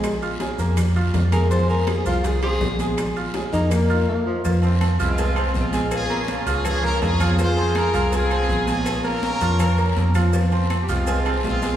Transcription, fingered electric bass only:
X:1
M:4/4
L:1/8
Q:1/4=163
K:Fm
V:1 name="Fingered electric bass" clef=bass
B,,,3 F,,3 F,,2- | F,,3 C,,3 B,,,2- | B,,,3 F,,3 z2 | F,,3 C,,3 B,,,2- |
B,,,3 D,,3 F,,2- | F,,3 C,,3 B,,,2- | B,,,3 F,,3 F,,2- | F,,3 C,,3 B,,,2 |]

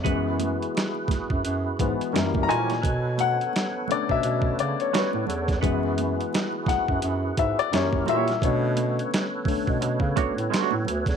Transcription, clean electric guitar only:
X:1
M:4/4
L:1/8
Q:"Swing 16ths" 1/4=86
K:Bdor
V:1 name="Clean electric guitar"
z6 z [^A,E=Gc] | z6 [A,DFc] z | z6 z [^A,E=Gc] | z4 z [A,DFc] [A,DFc] z |]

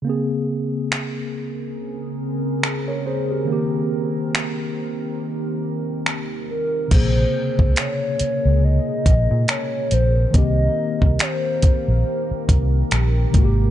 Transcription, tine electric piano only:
X:1
M:4/4
L:1/16
Q:"Swing 16ths" 1/4=70
K:Bbdor
V:1 name="Tine electric piano"
z12 z [Bd] [Ac] [GB]- | [GB] z12 z3 | z16 | z16 |]
V:2 name="Tine electric piano"
[D,B,CA]16 | [E,B,CG]12- [E,B,CG]2 z2 | [C,D,B,A]16 | [E,B,CG]12- [E,B,CG]2 [C,A,B,_G=G]2 |]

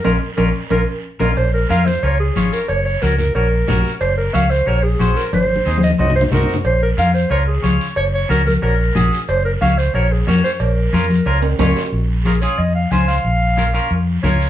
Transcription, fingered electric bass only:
X:1
M:4/4
L:1/8
Q:1/4=182
K:Bbm
V:1 name="Fingered electric bass" clef=bass
B,,, z B,,, z B,,, z2 B,,, | B,,,2 F,,2 D,,2 A,,, z | G,,,2 D,,2 B,,,2 B,,, z | G,,,2 D,,2 B,,,2 B,,, z |
A,,,2 E,,2 C,,2 C,, z | B,,,2 F,,2 D,,2 D,, z | G,,,2 D,,2 B,,,2 B,,, z | G,,,2 D,,2 B,,,2 F,, z |
B,,,2 F,,2 D,,2 D,, z | B,,,4 F,,2 D,,2 | B,,,4 F,,2 D,,2 |]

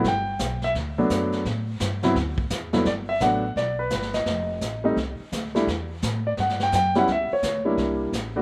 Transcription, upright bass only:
X:1
M:4/4
L:1/8
Q:"Swing" 1/4=171
K:G
V:1 name="Upright bass" clef=bass
G,,,2 B,,,2 D,,2 F,,2 | A,,2 G,,2 D,,2 E,,2 | G,,,2 A,,,2 B,,,2 G,,,2 | =F,,,2 A,,,2 C,, z D,,2 |
E,,2 A,,2 G,,2 F,,2 | ^C,, z D,,2 =C,,2 A,,,2 |]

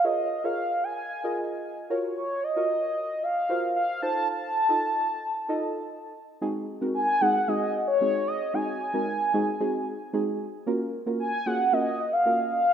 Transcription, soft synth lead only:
X:1
M:4/4
L:1/16
Q:1/4=113
K:Abmix
V:1 name="Soft synth lead"
e3 f3 a6 z4 | d2 e6 f4 f2 =a2 | =a12- a2 z2 | z4 a2 g2 e3 d3 e2 |
a12 z4 | z4 a2 g2 e3 f3 f2 |]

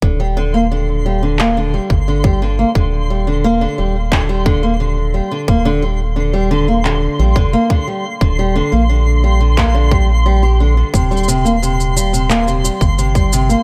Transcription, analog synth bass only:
X:1
M:4/4
L:1/16
Q:1/4=88
K:Eb
V:1 name="Analog synth bass" clef=bass
E,,,8- E,,,2 z G,,,4 z | E,,,4- E,,, z E,,,8 z2 | E,,,8- E,,, z B,,, F,,, z4 | E,,,2 z B,,,12 z |
E,,,8- E,,,2 z G,,,4 z |]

